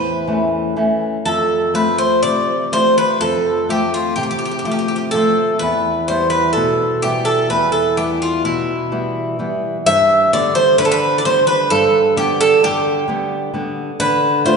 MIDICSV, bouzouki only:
0, 0, Header, 1, 2, 480
1, 0, Start_track
1, 0, Tempo, 975610
1, 624, Time_signature, 9, 3, 24, 8
1, 1581, Tempo, 956938
1, 3501, Tempo, 934579
1, 5421, Tempo, 914634
1, 7409, End_track
2, 0, Start_track
2, 0, Title_t, "Bouzouki"
2, 0, Program_c, 0, 25
2, 0, Note_on_c, 0, 71, 93
2, 419, Note_off_c, 0, 71, 0
2, 617, Note_on_c, 0, 69, 80
2, 858, Note_off_c, 0, 69, 0
2, 860, Note_on_c, 0, 71, 79
2, 974, Note_off_c, 0, 71, 0
2, 976, Note_on_c, 0, 72, 84
2, 1093, Note_off_c, 0, 72, 0
2, 1095, Note_on_c, 0, 74, 88
2, 1341, Note_off_c, 0, 74, 0
2, 1343, Note_on_c, 0, 72, 92
2, 1463, Note_off_c, 0, 72, 0
2, 1465, Note_on_c, 0, 71, 83
2, 1574, Note_off_c, 0, 71, 0
2, 1578, Note_on_c, 0, 69, 88
2, 1805, Note_off_c, 0, 69, 0
2, 1826, Note_on_c, 0, 67, 81
2, 1943, Note_off_c, 0, 67, 0
2, 1945, Note_on_c, 0, 65, 73
2, 2052, Note_off_c, 0, 65, 0
2, 2054, Note_on_c, 0, 67, 75
2, 2085, Note_off_c, 0, 67, 0
2, 2091, Note_on_c, 0, 67, 56
2, 2124, Note_off_c, 0, 67, 0
2, 2130, Note_on_c, 0, 67, 60
2, 2163, Note_off_c, 0, 67, 0
2, 2169, Note_on_c, 0, 67, 54
2, 2198, Note_off_c, 0, 67, 0
2, 2204, Note_on_c, 0, 67, 57
2, 2227, Note_off_c, 0, 67, 0
2, 2233, Note_on_c, 0, 67, 45
2, 2265, Note_off_c, 0, 67, 0
2, 2271, Note_on_c, 0, 67, 51
2, 2297, Note_off_c, 0, 67, 0
2, 2303, Note_on_c, 0, 67, 48
2, 2328, Note_off_c, 0, 67, 0
2, 2334, Note_on_c, 0, 67, 55
2, 2365, Note_off_c, 0, 67, 0
2, 2371, Note_on_c, 0, 67, 47
2, 2413, Note_off_c, 0, 67, 0
2, 2418, Note_on_c, 0, 67, 54
2, 2450, Note_off_c, 0, 67, 0
2, 2456, Note_on_c, 0, 67, 55
2, 2492, Note_off_c, 0, 67, 0
2, 2533, Note_on_c, 0, 69, 83
2, 2762, Note_off_c, 0, 69, 0
2, 2775, Note_on_c, 0, 71, 83
2, 3017, Note_off_c, 0, 71, 0
2, 3019, Note_on_c, 0, 72, 79
2, 3127, Note_off_c, 0, 72, 0
2, 3129, Note_on_c, 0, 71, 78
2, 3241, Note_off_c, 0, 71, 0
2, 3243, Note_on_c, 0, 69, 75
2, 3492, Note_on_c, 0, 67, 82
2, 3498, Note_off_c, 0, 69, 0
2, 3608, Note_on_c, 0, 69, 81
2, 3621, Note_off_c, 0, 67, 0
2, 3734, Note_off_c, 0, 69, 0
2, 3736, Note_on_c, 0, 71, 76
2, 3848, Note_off_c, 0, 71, 0
2, 3850, Note_on_c, 0, 69, 76
2, 3969, Note_off_c, 0, 69, 0
2, 3980, Note_on_c, 0, 67, 73
2, 4094, Note_off_c, 0, 67, 0
2, 4106, Note_on_c, 0, 65, 70
2, 4222, Note_off_c, 0, 65, 0
2, 4224, Note_on_c, 0, 64, 61
2, 4745, Note_off_c, 0, 64, 0
2, 4951, Note_on_c, 0, 76, 102
2, 5189, Note_off_c, 0, 76, 0
2, 5191, Note_on_c, 0, 74, 86
2, 5302, Note_off_c, 0, 74, 0
2, 5304, Note_on_c, 0, 72, 83
2, 5414, Note_off_c, 0, 72, 0
2, 5422, Note_on_c, 0, 71, 88
2, 5454, Note_off_c, 0, 71, 0
2, 5458, Note_on_c, 0, 69, 78
2, 5491, Note_off_c, 0, 69, 0
2, 5493, Note_on_c, 0, 71, 91
2, 5631, Note_off_c, 0, 71, 0
2, 5633, Note_on_c, 0, 74, 67
2, 5664, Note_off_c, 0, 74, 0
2, 5670, Note_on_c, 0, 72, 87
2, 5781, Note_off_c, 0, 72, 0
2, 5783, Note_on_c, 0, 71, 86
2, 5906, Note_on_c, 0, 69, 89
2, 5909, Note_off_c, 0, 71, 0
2, 6130, Note_off_c, 0, 69, 0
2, 6153, Note_on_c, 0, 67, 77
2, 6262, Note_off_c, 0, 67, 0
2, 6274, Note_on_c, 0, 69, 91
2, 6394, Note_off_c, 0, 69, 0
2, 6398, Note_on_c, 0, 67, 85
2, 6910, Note_off_c, 0, 67, 0
2, 7111, Note_on_c, 0, 71, 101
2, 7329, Note_off_c, 0, 71, 0
2, 7350, Note_on_c, 0, 72, 76
2, 7409, Note_off_c, 0, 72, 0
2, 7409, End_track
0, 0, End_of_file